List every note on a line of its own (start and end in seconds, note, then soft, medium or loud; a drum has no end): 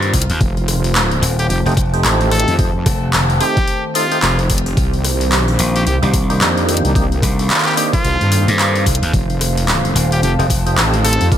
0.00 0.12 G2 loud
0.00 0.37 D#3 medium
0.00 0.37 A#3 medium
0.00 0.37 C4 medium
0.00 2.55 F4 medium
0.00 11.32 C5 medium
0.00 4.77 F5 medium
0.00 0.41 A#5 medium
0.00 open hi-hat soft
0.13 0.27 C2 loud
0.13 kick medium
0.13 open hi-hat medium
0.22 closed hi-hat medium
0.30 0.39 D#2 loud
0.30 open hi-hat soft
0.40 1.21 F1 loud
0.40 11.27 D#3 medium
0.40 4.73 A3 medium
0.40 11.28 C4 medium
0.40 kick loud
0.40 open hi-hat soft
0.57 open hi-hat soft
0.68 cross-stick medium
0.68 open hi-hat medium
0.84 open hi-hat soft
0.95 clap loud
0.95 open hi-hat soft
1.11 open hi-hat soft
1.22 1.48 D#1 loud
1.22 open hi-hat medium
1.29 4.77 A5 medium
1.39 1.46 G4 medium
1.39 open hi-hat soft
1.49 1.64 F1 loud
1.49 1.60 G4 medium
1.49 open hi-hat soft
1.66 2.02 F1 loud
1.66 1.74 A3 medium
1.66 1.74 C4 medium
1.66 1.74 D#4 medium
1.66 1.74 G4 medium
1.66 open hi-hat soft
1.69 open hi-hat soft
1.72 open hi-hat soft
1.74 kick loud
1.74 open hi-hat soft
1.77 open hi-hat medium
1.89 open hi-hat soft
1.94 2.56 A3 medium
1.94 2.56 C4 medium
1.94 2.56 D#4 medium
1.94 2.56 G4 medium
1.94 open hi-hat soft
2.04 2.45 A1 loud
2.04 clap loud
2.04 open hi-hat soft
2.21 open hi-hat soft
2.31 2.55 A4 loud
2.31 cross-stick medium
2.31 open hi-hat medium
2.40 closed hi-hat medium
2.48 2.84 F2 loud
2.48 open hi-hat soft
2.59 2.71 A3 medium
2.59 2.71 C4 medium
2.59 2.71 D#4 medium
2.59 6.91 G4 medium
2.59 2.71 G4 medium
2.59 kick loud
2.59 open hi-hat soft
2.86 3.12 F1 loud
2.86 kick loud
2.86 cross-stick medium
2.86 open hi-hat medium
3.13 3.39 F1 loud
3.13 clap loud
3.13 open hi-hat soft
3.30 open hi-hat soft
3.40 3.59 A3 loud
3.40 3.59 C4 medium
3.40 3.59 D#4 medium
3.40 3.84 G4 loud
3.40 3.59 G4 loud
3.40 open hi-hat medium
3.57 kick loud
3.57 open hi-hat soft
3.68 open hi-hat soft
3.95 4.07 A3 medium
3.95 4.07 C4 medium
3.95 4.07 D#4 medium
3.95 4.39 F4 loud
3.95 4.07 A4 medium
3.95 open hi-hat medium
4.12 4.20 A3 medium
4.12 4.19 C4 medium
4.12 4.19 D#4 medium
4.12 4.20 G4 loud
4.12 open hi-hat soft
4.22 4.75 F1 loud
4.22 clap loud
4.22 open hi-hat soft
4.39 open hi-hat soft
4.50 kick medium
4.50 open hi-hat medium
4.58 closed hi-hat medium
4.66 open hi-hat soft
4.77 5.34 C2 loud
4.77 9.10 A#3 medium
4.77 kick loud
4.77 open hi-hat soft
4.93 open hi-hat soft
5.04 cross-stick soft
5.04 open hi-hat medium
5.11 11.38 F5 medium
5.21 open hi-hat soft
5.32 5.57 B1 loud
5.32 clap loud
5.32 open hi-hat soft
5.48 open hi-hat soft
5.59 5.85 A#1 loud
5.59 open hi-hat medium
5.75 5.82 G4 medium
5.75 open hi-hat soft
5.86 6.00 C2 loud
5.86 5.97 G4 medium
5.86 open hi-hat soft
6.02 6.39 C2 loud
6.02 6.10 A#3 medium
6.02 6.10 D4 medium
6.02 6.10 D#4 medium
6.02 6.10 G4 medium
6.02 open hi-hat soft
6.13 kick loud
6.13 open hi-hat medium
6.30 6.93 A#3 medium
6.30 6.93 D4 medium
6.30 6.93 D#4 medium
6.30 6.93 G4 medium
6.30 open hi-hat soft
6.41 6.82 F2 loud
6.41 clap loud
6.41 open hi-hat soft
6.58 open hi-hat soft
6.69 cross-stick medium
6.69 open hi-hat medium
6.77 closed hi-hat medium
6.84 7.21 C2 loud
6.84 open hi-hat soft
6.95 7.07 A#3 medium
6.95 7.07 D4 medium
6.95 7.07 D#4 medium
6.95 7.07 G4 medium
6.95 9.12 A4 medium
6.95 kick loud
6.95 open hi-hat soft
7.12 open hi-hat soft
7.22 7.48 C2 loud
7.22 kick loud
7.22 cross-stick medium
7.22 open hi-hat medium
7.39 open hi-hat soft
7.50 clap loud
7.50 open hi-hat soft
7.54 clap medium
7.58 clap medium
7.62 7.73 G4 medium
7.62 clap medium
7.66 clap medium
7.66 open hi-hat soft
7.69 clap soft
7.72 clap soft
7.75 7.95 A#3 loud
7.75 7.95 D4 medium
7.75 7.95 D#4 medium
7.75 7.88 G4 medium
7.75 7.95 G4 loud
7.75 clap soft
7.75 open hi-hat medium
7.93 8.48 F4 loud
7.93 kick loud
7.93 open hi-hat soft
8.04 8.18 C2 loud
8.04 open hi-hat soft
8.21 8.45 G2 loud
8.21 open hi-hat soft
8.32 open hi-hat medium
8.48 8.84 G2 loud
8.48 open hi-hat soft
8.59 clap loud
8.59 open hi-hat soft
8.76 open hi-hat soft
8.86 9.00 C2 loud
8.86 kick medium
8.86 open hi-hat medium
8.95 closed hi-hat medium
9.02 9.12 D#2 medium
9.02 open hi-hat soft
9.13 9.94 F1 loud
9.13 11.30 A3 medium
9.13 11.38 F4 medium
9.13 kick loud
9.13 open hi-hat soft
9.30 open hi-hat soft
9.41 cross-stick medium
9.41 open hi-hat medium
9.57 open hi-hat soft
9.68 clap loud
9.68 open hi-hat soft
9.85 11.38 A5 medium
9.85 open hi-hat soft
9.95 10.21 D#1 loud
9.95 open hi-hat medium
10.12 10.19 G4 medium
10.12 open hi-hat soft
10.23 10.36 F1 loud
10.23 10.33 G4 medium
10.23 open hi-hat soft
10.39 10.75 F1 loud
10.39 10.47 A3 medium
10.39 10.47 C4 medium
10.39 10.47 D#4 medium
10.39 10.47 G4 medium
10.39 open hi-hat soft
10.50 kick loud
10.50 open hi-hat medium
10.66 11.29 A3 medium
10.66 11.29 C4 medium
10.66 11.29 D#4 medium
10.66 11.29 G4 medium
10.66 open hi-hat soft
10.77 11.18 A1 loud
10.77 clap loud
10.77 open hi-hat soft
10.94 open hi-hat soft
11.04 11.27 A4 loud
11.04 cross-stick medium
11.04 open hi-hat medium
11.13 closed hi-hat medium
11.20 11.30 F2 loud
11.20 open hi-hat soft
11.32 11.38 D3 medium
11.32 11.38 G3 medium
11.32 11.38 A3 medium
11.32 11.38 B3 medium
11.32 11.38 D4 medium
11.32 11.38 F4 medium
11.32 11.38 D5 medium
11.32 kick loud
11.32 open hi-hat soft